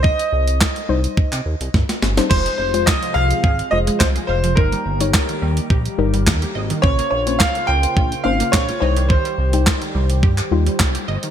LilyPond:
<<
  \new Staff \with { instrumentName = "Grand piano" } { \time 4/4 \key f \minor \tempo 4 = 106 ees''2. r4 | c''8 c''8 ees''8 f''4 ees''8 c''8 c''8 | bes'2.~ bes'8 r8 | des''8 des''8 f''8 g''4 f''8 des''8 des''8 |
c''2.~ c''8 r8 | }
  \new Staff \with { instrumentName = "Synth pluck" } { \time 4/4 \key f \minor <g ees' c''>4 r8 <g ees' c''>4. r8. <g ees' c''>16 | <aes f' c''>8 r16 <aes f' c''>4~ <aes f' c''>16 r8 <aes f' c''>4 r8 | <g ees' bes'>8 r16 <g ees' des''>4~ <g ees' des''>16 r8 <g ees' bes'>4 r8 | <bes des' c''>8 r16 <bes des' c''>4~ <bes des' c''>16 r8 <bes des' c''>4 <g ees' c''>8~ |
<g ees' c''>8 r16 <g ees' g'>4~ <g ees' g'>16 r8 <g ees' f'>4 r8 | }
  \new Staff \with { instrumentName = "Synth arpeggio sound" } { \time 4/4 \key f \minor r1 | f16 aes16 r8 f''16 f16 aes16 r16 aes'16 r8 aes16 c'16 aes'16 f''16 f16 | ees16 g16 r8 ees''16 ees16 g16 r16 g'16 r8 g16 bes16 g'16 ees''16 ees16 | des16 bes16 r8 des''16 des16 bes16 r16 f'16 r8 bes16 c'16 f'16 ees''16 ees16 |
ees16 g16 r8 ees''16 ees16 g16 r16 g'16 r8 g16 c'16 g'16 ees''16 ees16 | }
  \new Staff \with { instrumentName = "Analog synth pad" } { \clef bass \time 4/4 \key f \minor << { r1 | <c f f'>1 | <ees g g'>1 | <des f'>2.~ <des f'>8 <ees g g'>8~ |
<ees g g'>1 | } \\ { r1 | aes1 | bes1 | c''1~ |
c''1 | } >> }
  \new Staff \with { instrumentName = "Analog synth bass" } { \clef bass \time 4/4 \key f \minor c,8 c,8. r16 c,8 r16 c16 ees,16 c,16 g,16 r16 g,,8 | f,,8 f,,8. r16 c,8 aes,,8 f,,8 c,8 f,,8 | g,,8 g,,8. r16 ees,8 bes,,8 g,,8 ees,8 aes,,8 | bes,,8 bes,,8. r16 des,8 bes,,8 aes,,8 bes,,8 c,8~ |
c,8 c,8. r16 c,8 g,8 ees,8 c,8 g,,16 r16 | }
  \new DrumStaff \with { instrumentName = "Drums" } \drummode { \time 4/4 bd16 hh8 hh16 <hc bd sn>16 hh8 hh16 bd16 <hc hh>8 hh16 <bd sn>16 <hh sn>16 sn16 <hh sn>16 | <cymc bd>16 hh8 hh16 <hc bd sn>16 hh8 hh16 bd16 hh8 hh16 <hc bd sn>16 hh8 hh16 | bd16 hh8 hh16 <hc bd sn>16 hh8 hh16 bd16 hh8 hh16 <hc bd sn>16 hh8 hh16 | bd16 hh8 hh16 <hc bd sn>16 hh8 hh16 bd16 hh8 hh16 <hc bd sn>16 hh8 hh16 |
bd16 hh8 hh16 <hc bd sn>16 hh8 hh16 bd16 <hc hh>8 hh16 <hc bd sn>16 hh8 hh16 | }
>>